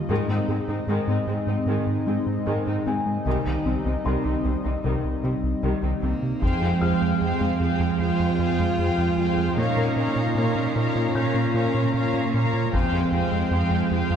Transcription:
Already playing: analog synth pad D#5
0.09 analog synth bass G#2, cello section G#2, viola section D#3 G#3, synth pluck G#3, analog synth pad G#3 C4 D#4
0.28 analog synth bass G#2, cello section G#2, synth pluck C4, viola section C4 D#4
0.48 analog synth bass G#2, cello section G#2, viola section G#3 C4, synth pluck G#4
0.68 analog synth bass G#2, cello section G#2, viola section C4 D#4, synth pluck G#4
0.87 analog synth bass G#2, cello section G#2, viola section D#3 G#3, synth pluck G#3
1.08 analog synth bass G#2, cello section G#2, synth pluck C4, viola section C4 D#4
1.27 analog synth bass G#2, cello section G#2, viola section G#3 C4, synth pluck C4
1.47 analog synth bass G#2, cello section G#2, viola section C4 D#4, synth pluck C4
1.66 analog synth bass G#2, cello section G#2, viola section D#3 G#3, synth pluck G#3
1.87 analog synth bass G#2
2.07 cello section G#2, analog synth bass G#3, viola section G#3 C4, synth pluck D#4
2.26 analog synth bass G#2
2.47 cello section G#2, analog synth bass G#2, viola section D#3 G#3, synth pluck G#3
2.66 analog synth bass G#2, cello section G#2, synth pluck C4, viola section C4 D#4
2.86 analog synth bass G#2, cello section G#2, viola section G#3 C4, synth pluck C4, felt piano G#5
3.06 analog synth bass G#3
3.25 analog synth bass C2, synth pluck C3, cello section C3, viola section D#3 G3, analog synth pad G3 D#5
3.46 analog synth bass C2, cello section C3, synth pluck D#3, viola section C4 D#4
3.65 analog synth bass C2, cello section C3, viola section G3 C4, synth pluck C4
3.85 analog synth bass C2, cello section C3, synth pluck C4, viola section C4 D#4
4.05 analog synth bass C2, cello section C3, synth pluck C3, viola section D#3 G3, felt piano C6
4.25 analog synth bass C2, cello section C3, synth pluck D#3, viola section C4 D#4
4.45 analog synth bass C2, cello section C3, synth pluck D#3, viola section G3 C4
4.64 analog synth bass C2, cello section C3, synth pluck D#3, viola section C4 D#4
4.84 analog synth bass C2, cello section C3, synth pluck C3, viola section D#3 G3
5.04 analog synth bass C2
5.24 analog synth bass C3, cello section C3, synth pluck G3, viola section G3 C4
5.44 analog synth bass C2
5.63 analog synth bass C2, synth pluck C3, cello section C3, viola section D#3 G3
5.83 analog synth bass C2, cello section C3, synth pluck D#3, viola section C4 D#4
6.02 analog synth bass C2, cello section C3, synth pluck D#3, viola section G3 C4, cello A#3
6.23 analog synth bass C3
6.41 cello section F2, analog synth bass F2, synth pluck F3, analog synth pad G#3 C4 F5 G5, cello C4, viola section G#4 C5, violin section F5 G5, taiko
6.62 analog synth bass F2, synth pluck F4
6.81 analog synth bass F2, synth pluck F4, viola section G#4 C5, violin section F5 G5, felt piano F6
7.01 analog synth bass F2, synth pluck G#3
7.21 cello section F2, analog synth bass F2, synth pluck F3, viola section G#4 C5, violin section F5 G5
7.41 analog synth bass F2, synth pluck G#3
7.60 analog synth bass F2, synth pluck F4, viola section G#4 C5, violin section F5 G5
7.80 analog synth bass F2, synth pluck F3
7.99 analog synth bass F2, cello section F2, cello F4, viola section G#4 C5, violin section F5 G5
8.20 analog synth bass F2, synth pluck G#3
8.39 analog synth bass F2, synth pluck F3, viola section G#4 C5, violin section F5 G5
8.59 analog synth bass F2, synth pluck G#3
8.78 analog synth bass F2, cello section F2, viola section G#4 C5, violin section F5 G5
8.98 analog synth bass F2, synth pluck F3
9.18 analog synth bass F2, synth pluck F4, viola section G#4 C5, violin section F5 G5
9.38 analog synth bass F2, synth pluck G#3
9.57 analog synth bass A#2, cello section A#2, synth pluck A#3, analog synth pad A#3 C#4 F4, cello D#4, viola section A#4 C#5, violin section F5 A#5
9.77 analog synth bass A#2, synth pluck A#4
9.96 analog synth bass A#2, viola section A#4 C#5, synth pluck A#4, violin section F5 A#5
10.16 analog synth bass A#2, synth pluck C#4
10.35 analog synth bass A#2, cello section A#2, synth pluck A#3, viola section A#4 C#5, violin section F5 A#5
10.55 analog synth bass A#2, synth pluck C#4
10.76 analog synth bass A#2, viola section A#4 C#5, synth pluck A#4, violin section F5 A#5
10.96 analog synth bass A#2, synth pluck A#3
11.15 analog synth bass A#2, cello section A#2, cello C#4, viola section A#4 C#5, violin section F5 A#5, felt piano G6
11.34 analog synth bass A#2, synth pluck C#4
11.54 analog synth bass A#2, synth pluck A#3, viola section A#4 C#5, violin section F5 A#5
11.74 analog synth bass A#2, synth pluck C#4
11.94 analog synth bass A#2, cello section A#2, viola section A#4 C#5, violin section F5 A#5
12.14 analog synth bass A#2, synth pluck A#3
12.34 analog synth bass A#2, viola section A#4 C#5, synth pluck A#4, violin section F5 A#5
12.54 analog synth bass A#2, synth pluck C#4
12.73 analog synth bass F2, cello section F2, synth pluck F3, analog synth pad G#3 C4 F5 G5, cello C4, viola section G#4 C5, violin section F5 G5, taiko
12.92 analog synth bass F2, synth pluck F4
13.12 analog synth bass F2, synth pluck F4, viola section G#4 C5, violin section F5 G5
13.32 analog synth bass F2, synth pluck G#3
13.51 analog synth bass F2, cello section F2, synth pluck F3, viola section G#4 C5, violin section F5 G5
13.70 analog synth bass F2, synth pluck G#3
13.91 analog synth bass F2, synth pluck F4, viola section G#4 C5, violin section F5 G5
14.10 analog synth bass F2, synth pluck F3

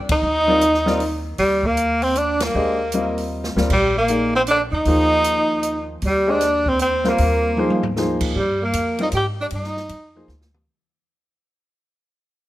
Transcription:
Already playing: grand piano G3 C4 F4 A#4 D5
0.09 upright bass D2, tenor saxophone D#4, kick, ride
0.22 upright bass D#2
0.48 grand piano G3 C4 F4 A#4 D5
0.61 closed hi-hat
0.74 snare
0.86 grand piano G3 C4 F4 A#4 D5, snare
1.00 open hi-hat
1.38 upright bass D#2, tenor saxophone G3, open hi-hat
1.63 tenor saxophone A#3, kick
1.77 closed hi-hat
2.02 tenor saxophone C4, open hi-hat
2.15 tenor saxophone D4, closed hi-hat
2.40 tenor saxophone A#3, snare, ride
2.54 upright bass D#2, grand piano G#3 D4 G4 C5 D#5
2.92 grand piano G3 C4 F4 A#4 D#5, closed hi-hat
3.18 open hi-hat
3.44 snare
3.56 upright bass D2, grand piano G3 C4 F4 A#4 D5, snare
3.70 upright bass A#1, tenor saxophone G3, kick, crash
3.98 tenor saxophone A#3
4.08 grand piano A#3 D#4 G#4 D5 F5, closed hi-hat
4.35 tenor saxophone C4
4.47 tenor saxophone D4, closed hi-hat
4.72 upright bass E2, tenor saxophone D#4
4.85 upright bass D#2, grand piano F3 A#3 D#4 G#4 C5, open hi-hat
5.24 closed hi-hat
5.63 closed hi-hat
6.02 upright bass D#2, tenor saxophone G3, open hi-hat
6.27 grand piano G#3 D4 G4 C5 D#5, tenor saxophone D4
6.41 snare, closed hi-hat
6.66 tenor saxophone C4, kick
6.79 tenor saxophone C4, closed hi-hat
7.04 grand piano G3 C4 F4 A#4 C5, tenor saxophone A#3, snare
7.09 tenor saxophone A#3
7.18 upright bass D#2, open hi-hat
7.57 grand piano F3 A#3 D#4 G#4 C5, high tom
7.70 high tom
7.83 floor tom
7.96 grand piano F3 A#3 D#4 G#4 C5, snare
8.21 kick, crash
8.35 upright bass G2, tenor saxophone G3
8.62 tenor saxophone A#3
8.73 upright bass F2, hi-hat pedal, ride
8.99 grand piano G3 C4 F4 A#4 D5, tenor saxophone D#4, ride
9.03 tenor saxophone D#4
9.12 upright bass G#2, tenor saxophone G4, hi-hat pedal, ride
9.17 tenor saxophone G4
9.41 tenor saxophone D4
9.51 upright bass G2, tenor saxophone D#4, ride
9.55 tenor saxophone D#4
9.64 snare
9.77 snare
9.89 upright bass F2, hi-hat pedal, ride
10.16 grand piano F3 A#3 D#4 G#4 C5
10.28 upright bass D2, snare
10.41 snare
10.54 mid tom

